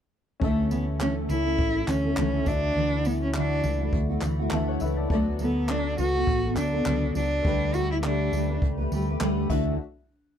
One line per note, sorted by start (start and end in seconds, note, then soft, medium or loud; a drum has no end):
0.40 1.26 D2 loud
0.40 0.71 D3 medium
0.40 0.70 E3 medium
0.40 0.70 A3 medium
0.40 0.70 A3 loud
0.40 2.42 C#4 medium
0.40 0.71 C#4 medium
0.40 2.43 A4 medium
0.40 0.72 A4 medium
0.40 kick loud
0.44 2.44 E5 medium
0.71 0.99 E3 medium
0.71 1.00 A3 medium
0.71 0.84 B3 medium
0.71 1.00 C#4 medium
0.71 1.00 A4 medium
0.71 tambourine medium
1.00 1.30 D3 medium
1.00 1.28 E3 medium
1.00 1.29 A3 medium
1.00 1.14 C#4 loud
1.00 1.30 C#4 medium
1.00 1.30 A4 medium
1.00 clap loud
1.29 1.58 C#2 medium
1.29 1.46 E3 medium
1.29 1.46 A3 medium
1.29 1.45 C#4 medium
1.29 1.90 E4 loud
1.29 1.44 A4 medium
1.29 tambourine medium
1.45 1.76 A3 soft
1.45 1.75 C#4 medium
1.45 1.74 A4 medium
1.58 1.83 A1 medium
1.58 kick loud
1.75 1.87 A3 soft
1.75 1.88 C#4 soft
1.75 1.88 A4 medium
1.87 2.12 D2 medium
1.87 2.04 E3 medium
1.87 2.04 A3 medium
1.87 2.48 C#4 medium
1.87 2.05 C#4 medium
1.87 2.03 A4 medium
1.87 clap medium
1.87 tambourine medium
2.04 2.17 A3 soft
2.04 2.18 C#4 soft
2.04 2.18 A4 medium
2.17 2.41 C#2 medium
2.17 2.47 D3 medium
2.17 2.45 E3 medium
2.17 2.46 A3 medium
2.17 2.47 C#4 medium
2.17 2.48 A4 medium
2.17 clap loud
2.44 2.71 D2 loud
2.44 2.75 E3 medium
2.44 2.76 A3 medium
2.44 4.76 D4 medium
2.44 3.08 D4 loud
2.44 2.76 E4 medium
2.44 4.77 F#4 medium
2.44 kick loud
2.44 tambourine medium
2.48 2.76 F#4 medium
2.48 4.49 E5 medium
2.75 3.60 D2 loud
2.75 3.06 D3 medium
2.75 3.04 E3 medium
2.75 3.05 A3 medium
2.75 3.05 E4 medium
2.75 3.06 F#4 medium
3.05 3.34 E3 medium
3.05 3.35 A3 medium
3.05 3.22 B3 medium
3.05 3.35 E4 medium
3.05 3.36 F#4 medium
3.05 tambourine medium
3.23 3.35 C#4 medium
3.34 3.64 D3 medium
3.34 3.62 E3 medium
3.34 3.64 A3 medium
3.34 3.91 D4 medium
3.34 3.64 E4 medium
3.34 3.65 F#4 medium
3.34 clap loud
3.63 3.88 C#2 medium
3.63 3.80 E3 medium
3.63 3.81 A3 medium
3.63 3.80 E4 medium
3.63 3.79 F#4 medium
3.63 tambourine medium
3.80 4.10 A3 medium
3.80 4.09 E4 medium
3.80 4.08 F#4 medium
3.93 4.17 D2 medium
3.93 kick loud
4.09 4.23 A3 medium
4.09 4.23 E4 medium
4.09 4.23 F#4 medium
4.21 4.46 D2 medium
4.21 4.39 E3 medium
4.21 4.39 A3 medium
4.21 4.39 E4 medium
4.21 4.38 F#4 medium
4.21 clap medium
4.21 tambourine medium
4.39 4.52 A3 medium
4.39 4.52 E4 medium
4.39 4.52 F#4 medium
4.51 4.76 D2 medium
4.51 4.81 D3 medium
4.51 4.80 E3 loud
4.51 4.81 A3 loud
4.51 4.82 E4 loud
4.51 4.82 F#4 loud
4.51 4.68 E5 medium
4.51 4.67 A5 medium
4.51 clap loud
4.68 4.81 C#5 medium
4.68 4.81 F#5 medium
4.80 5.05 C#2 loud
4.80 5.11 E3 medium
4.80 5.11 A3 medium
4.80 5.12 E4 medium
4.80 5.11 F#4 medium
4.80 4.97 B4 medium
4.80 4.97 E5 medium
4.80 tambourine medium
4.97 5.09 A4 medium
4.97 5.11 D5 medium
5.08 5.94 D2 loud
5.08 5.40 D3 medium
5.08 5.38 F#3 medium
5.08 7.40 B3 medium
5.08 5.40 B3 medium
5.08 5.40 F#4 medium
5.08 7.41 A4 medium
5.08 5.41 A4 medium
5.08 7.42 D5 medium
5.08 kick loud
5.13 5.26 A3 loud
5.39 5.68 F#3 medium
5.39 5.72 B3 loud
5.39 5.69 B3 medium
5.39 5.69 F#4 medium
5.39 5.70 A4 medium
5.39 tambourine medium
5.69 5.99 D3 medium
5.69 5.97 F#3 medium
5.69 5.98 B3 medium
5.69 5.99 D4 loud
5.69 5.98 F#4 medium
5.69 6.00 A4 medium
5.69 clap loud
5.98 6.23 C#2 loud
5.98 6.15 F#3 medium
5.98 6.15 B3 medium
5.98 6.15 F#4 medium
5.98 6.54 F#4 loud
5.98 6.13 A4 medium
5.98 tambourine medium
6.15 6.45 B3 soft
6.15 6.44 F#4 medium
6.15 6.43 A4 medium
6.27 6.57 A1 medium
6.27 kick loud
6.44 6.57 B3 soft
6.44 6.57 F#4 medium
6.44 6.57 A4 medium
6.57 6.81 D2 medium
6.57 6.73 F#3 medium
6.57 6.74 B3 medium
6.57 7.12 D4 loud
6.57 6.73 F#4 medium
6.57 6.72 A4 medium
6.57 clap medium
6.57 tambourine medium
6.73 6.86 B3 soft
6.73 6.86 F#4 soft
6.73 6.86 A4 medium
6.86 7.10 C#2 medium
6.86 7.15 D3 medium
6.86 7.14 F#3 medium
6.86 7.15 B3 medium
6.86 7.16 F#4 medium
6.86 7.16 A4 loud
6.86 clap loud
7.15 7.39 C#2 medium
7.15 7.45 F#3 medium
7.15 7.45 B3 medium
7.15 7.76 D4 loud
7.15 7.46 F#4 medium
7.15 7.46 A4 medium
7.15 tambourine medium
7.43 8.29 D2 loud
7.43 7.74 D3 medium
7.43 7.73 G3 medium
7.43 9.44 A3 medium
7.43 7.74 A3 medium
7.43 9.45 G4 medium
7.43 7.75 G4 medium
7.43 9.46 B4 medium
7.43 kick loud
7.47 7.75 B4 medium
7.74 8.03 G3 medium
7.74 8.03 A3 medium
7.74 7.91 F#4 loud
7.74 8.03 G4 medium
7.74 8.04 B4 medium
7.74 tambourine medium
7.91 7.97 E4 medium
8.03 8.33 D3 medium
8.03 8.31 G3 medium
8.03 8.32 A3 medium
8.03 8.58 D4 medium
8.03 8.33 G4 medium
8.03 8.34 B4 medium
8.03 clap loud
8.33 8.57 D2 medium
8.33 8.49 G3 medium
8.33 8.49 A3 medium
8.33 8.49 G4 medium
8.33 8.47 B4 medium
8.33 tambourine medium
8.49 8.79 A3 soft
8.49 8.78 G4 medium
8.49 8.76 B4 medium
8.62 8.86 C#2 medium
8.62 kick loud
8.78 8.91 A3 medium
8.78 8.92 G4 medium
8.78 8.91 B4 medium
8.91 9.15 D2 medium
8.91 9.07 G3 medium
8.91 9.08 A3 medium
8.91 9.08 G4 medium
8.91 9.06 B4 medium
8.91 tambourine medium
9.08 9.20 A3 soft
9.08 9.21 G4 medium
9.08 9.21 B4 medium
9.20 9.45 D2 medium
9.20 9.48 D3 loud
9.20 9.50 G3 loud
9.20 9.50 A3 medium
9.20 9.50 G4 medium
9.20 9.50 B4 loud
9.20 clap loud
9.50 9.77 D2 loud
9.50 9.74 D3 medium
9.50 9.74 E3 medium
9.50 9.74 A3 medium
9.50 9.77 D4 medium
9.50 9.74 E4 medium
9.50 9.77 F#4 medium
9.50 9.75 F#4 medium
9.50 9.77 E5 medium
9.50 kick medium
9.50 crash medium